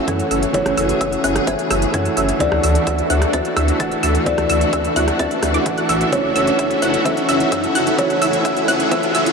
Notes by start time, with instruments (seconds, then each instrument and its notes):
Already playing: grand piano E3 A3 C#4 F#4, string section E3 A3 C#4 F#4, kalimba C#5, riser
0.07 sub bass F#2, grand piano E3 A3 C#4 F#4, supersaw synth C#4 E4 F#4 A4 G#5, synth pluck G#6, kick, closed hi-hat
0.19 closed hi-hat
0.31 sub bass F#1, supersaw synth C#4 E4 F#4 A4 E5, synth pluck E6, open hi-hat
0.43 closed hi-hat
0.53 sub bass F#1, grand piano E3 A3 C#4 F#4, supersaw synth C#4 E4 F#4 A4 E5, string section G#4, kalimba C#5, synth pluck E6, kick, closed hi-hat
0.66 sub bass F#1, cross-stick, closed hi-hat
0.77 sub bass F#1, supersaw synth C#4 E4 F#4 A4 E5, synth pluck E6, open hi-hat
0.89 closed hi-hat
1.01 sub bass F#1, supersaw synth C#4, synth pluck E6, kick, closed hi-hat
1.12 closed hi-hat
1.24 sub bass F#1, supersaw synth C#4 E4 F#4 A4 F#5, kalimba E5, synth pluck F#6, open hi-hat
1.36 cross-stick, closed hi-hat
1.47 sub bass F#1, supersaw synth C#4 E4 G#5, kalimba E5, synth pluck G#6, kick, closed hi-hat
1.59 closed hi-hat
1.71 sub bass F#1, supersaw synth C#4 E4 F#4 A4 E5, synth pluck E6, cross-stick, open hi-hat
1.82 closed hi-hat
1.93 sub bass F#2, grand piano E3 A3 C#4 F#4, supersaw synth C#4, synth pluck G#6, kick, closed hi-hat
2.05 closed hi-hat
2.17 sub bass F#1, supersaw synth C#4 E4 F#4 A4 E5, synth pluck E6, open hi-hat
2.29 closed hi-hat
2.39 sub bass D2, grand piano E3 A3 D4 F#4, supersaw synth D4 E4 F#4 A4 E5, string section D4 F#4, kalimba D5, synth pluck E6, kick, closed hi-hat
2.52 sub bass D2, cross-stick
2.63 sub bass D2, supersaw synth D4 E4 F#4 A4 E5, synth pluck E6, open hi-hat
2.75 closed hi-hat
2.87 sub bass D2, supersaw synth E4 F#4 A4 E5, synth pluck E6, kick, closed hi-hat
2.98 closed hi-hat
3.10 sub bass D2, supersaw synth D4 E4 F#4 A4 F#5, kalimba E5, synth pluck F#6, open hi-hat
3.22 cross-stick, closed hi-hat
3.33 sub bass D2, supersaw synth D4 E4 F#4 A4 A5, kalimba E5, synth pluck A6, kick, closed hi-hat
3.45 closed hi-hat
3.57 sub bass D2, supersaw synth D4 E4 F#4 A4 E5, synth pluck E6, cross-stick, open hi-hat
3.68 closed hi-hat
3.79 sub bass D1, grand piano E3 A3 D4 F#4, supersaw synth E4 F#4 A4 A5, synth pluck A6, kick, closed hi-hat
3.92 closed hi-hat
4.03 sub bass D2, supersaw synth D4 E4 F#4 A4 E5, synth pluck E6, open hi-hat
4.15 closed hi-hat
4.25 sub bass D2, grand piano E3 A3 D4 F#4, supersaw synth E4 F#4 A4 E5, kalimba D5, string section E5, synth pluck E6, kick, closed hi-hat
4.38 sub bass D2, cross-stick, closed hi-hat
4.50 sub bass D2, supersaw synth D4 E4 F#4 A4 E5, synth pluck E6, open hi-hat
4.61 closed hi-hat
4.73 sub bass D2, supersaw synth D4 E4 F#4 A4 E5, synth pluck E6, kick, closed hi-hat
4.84 closed hi-hat
4.96 sub bass D2, supersaw synth D4 E4 F#4 A4 F#5, kalimba E5, synth pluck F#6, open hi-hat
5.08 cross-stick, closed hi-hat
5.19 sub bass D2, supersaw synth E4 F#4 A4, kalimba E5, synth pluck A6, kick, closed hi-hat
5.31 closed hi-hat
5.43 sub bass D2, cross-stick, open hi-hat
5.54 supersaw synth D4 E4 F#4 A4 D5, synth pluck D6, closed hi-hat
5.65 sub bass D1, grand piano E3 A3 D4 F#4, kick, closed hi-hat
5.78 supersaw synth D4 E4 F#4 A4 F#5, synth pluck F#6, closed hi-hat
5.89 sub bass A1, supersaw synth D4 E4 F#4 A4 E5, synth pluck E6, open hi-hat
6.01 closed hi-hat
6.11 sub bass F#1, grand piano E3 A3 C#4 F#4, supersaw synth C#4 E4 F#4 A4 E5, kalimba C#5, synth pluck E6, kick, closed hi-hat
6.24 sub bass F#1
6.36 sub bass F#1, supersaw synth C#4 E4 F#4 A4 E5, synth pluck E6, open hi-hat
6.47 closed hi-hat
6.59 sub bass F#1, supersaw synth C#4 E4 F#4 A4 E5, synth pluck E6, kick, closed hi-hat
6.71 closed hi-hat
6.82 sub bass F#1, supersaw synth C#4 E4 F#4 A4 F#5, kalimba E5, synth pluck F#6, open hi-hat
6.94 closed hi-hat
7.04 sub bass F#1, grand piano E3 A3 C#4 F#4, supersaw synth C#4 E4 A4 E5, kalimba E5, synth pluck E6, kick, closed hi-hat
7.17 closed hi-hat
7.29 sub bass F#1, supersaw synth C#4 E4 F#4 A4 E5, synth pluck E6, open hi-hat
7.40 closed hi-hat
7.52 sub bass F#2, supersaw synth C#4 F#4 A4 E5, synth pluck E6, kick, closed hi-hat
7.64 closed hi-hat
7.75 sub bass F#1, supersaw synth C#4 E4 F#4 A4 F#5, synth pluck F#6, open hi-hat
7.87 closed hi-hat
7.97 sub bass F#1, grand piano E3 A3 C#4 F#4, supersaw synth C#4, string section G#4, kalimba C#5, synth pluck E6, kick, closed hi-hat
8.10 sub bass F#1, closed hi-hat
8.22 sub bass F#1, supersaw synth C#4 E4 F#4 A4 E5, synth pluck E6, open hi-hat
8.33 closed hi-hat
8.45 sub bass F#1, supersaw synth C#4 E4 F#4 A4 E5, synth pluck E6, kick, closed hi-hat
8.57 closed hi-hat
8.68 sub bass F#1, supersaw synth C#4 E4 F#4 A4 F#5, kalimba E5, synth pluck F#6, open hi-hat
8.80 closed hi-hat
8.90 sub bass F#1, grand piano E3 A3 C#4 F#4, supersaw synth C#4 E4 F#4 A4 E5, kalimba E5, synth pluck E6, kick, closed hi-hat
9.03 closed hi-hat
9.15 sub bass F#1, supersaw synth C#4 E4 F#4 A4 E5, synth pluck E6, open hi-hat
9.26 closed hi-hat